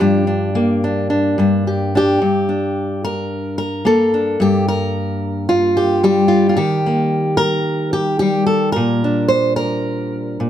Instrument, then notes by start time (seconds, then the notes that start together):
steel-string acoustic guitar
Already playing: G4
0.00 G2 D4
0.27 D4
0.55 A#3
0.84 D4
1.10 D4
1.38 G2 D4
1.67 G4
1.95 D4 G4
2.22 G2
2.49 D4
3.04 A#4
3.58 A#4
3.85 A#3 A4
4.14 D4
4.40 G2 G4
4.68 A#4
5.49 F4
5.77 G4
6.03 G3 G4
6.28 F4
6.49 F4
6.57 D#3 G4
6.86 A#3
7.37 A#4
7.93 G4
8.19 G3 G4
8.46 A4
8.72 A#2 A#4
9.04 D4
9.28 C5
9.56 A#4
10.40 A#2